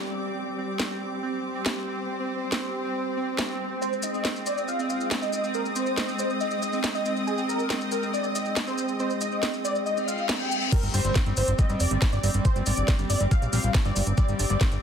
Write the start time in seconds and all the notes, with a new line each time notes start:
Already playing: G3 C4 G4 D5 D6, downlifter
0.80 snare
1.12 C5
1.66 snare
2.52 snare
3.39 snare
3.82 G#3 C5, maracas
3.93 G#4, maracas
4.03 D#5, maracas
4.14 maracas
4.25 snare, maracas
4.33 D#5, maracas
4.46 D5 D#6, maracas
4.58 maracas
4.68 F5, maracas
4.80 maracas
4.90 F5, maracas
5.01 maracas
5.11 snare, maracas
5.22 D#5, maracas
5.33 maracas
5.44 maracas
5.54 A#4, maracas
5.65 maracas
5.76 C5, maracas
5.86 maracas
5.98 snare, maracas
6.08 maracas
6.19 C5, maracas
6.30 maracas
6.40 D#5, maracas
6.51 maracas
6.62 D#5, maracas
6.73 maracas
6.84 snare, maracas
6.95 D#5, maracas
7.05 maracas
7.16 maracas
7.27 G#4, maracas
7.38 maracas
7.49 A#4, maracas
7.59 maracas
7.70 snare, maracas
7.81 maracas
7.92 A#4, maracas
8.03 maracas
8.13 D5, maracas
8.24 maracas
8.35 D#5, maracas
8.45 maracas
8.56 snare, maracas
8.67 C5, maracas
8.78 maracas
8.88 maracas
8.99 C5, maracas
9.10 maracas
9.21 D#5, maracas
9.32 maracas
9.43 snare, maracas
9.53 maracas
9.64 D5, maracas
9.75 maracas
9.86 D#5, reverse cymbal, maracas
9.97 maracas
10.08 F5, maracas
10.18 maracas
10.29 snare, maracas
10.40 G5, maracas
10.51 maracas
10.61 maracas
10.72 G3 C4 A#4, kick, closed hi-hat, crash, impact, maracas
10.77 G4
10.83 G1 D6, closed hi-hat, maracas
10.94 G1 G3 C5, open hi-hat, maracas
11.04 G1 G3 D5, closed hi-hat, maracas
11.15 kick, snare, closed hi-hat, maracas
11.26 G1 G3, closed hi-hat, maracas
11.37 G1 G3 C5, open hi-hat, maracas
11.48 G1, closed hi-hat, maracas
11.59 G3 D#5, kick, closed hi-hat, maracas
11.69 G2 G3, closed hi-hat, maracas
11.80 F1 D5, open hi-hat, maracas
11.91 G1 G3, closed hi-hat, maracas
12.02 G3, kick, snare, closed hi-hat, maracas
12.13 G1 D5, closed hi-hat, maracas
12.23 G1 G3, open hi-hat, maracas
12.34 G1 G3, closed hi-hat, maracas
12.45 C5, kick, closed hi-hat, maracas
12.56 G1 G3, closed hi-hat, maracas
12.66 G#1 G3 D5, open hi-hat, maracas
12.77 G1, closed hi-hat, maracas
12.88 G3, kick, snare, closed hi-hat, maracas
12.99 G1 G3, closed hi-hat, maracas
13.10 G1 D5, open hi-hat, maracas
13.21 G1 G3, closed hi-hat, maracas
13.31 G3 F5, kick, closed hi-hat, maracas
13.42 A#1, closed hi-hat, maracas
13.53 A#1 G3 F5, open hi-hat, maracas
13.64 A#1 G3, closed hi-hat, maracas
13.74 kick, snare, closed hi-hat, maracas
13.85 G1 G3 D5, closed hi-hat, maracas
13.96 G1 G3, open hi-hat, maracas
14.07 G1, closed hi-hat, maracas
14.18 G3 D5, kick, closed hi-hat, maracas
14.28 G1 G3, closed hi-hat, maracas
14.39 G1 D5, open hi-hat, maracas
14.50 G1 G3, closed hi-hat, maracas
14.60 G3, kick, snare, closed hi-hat, maracas
14.72 G1, closed hi-hat, maracas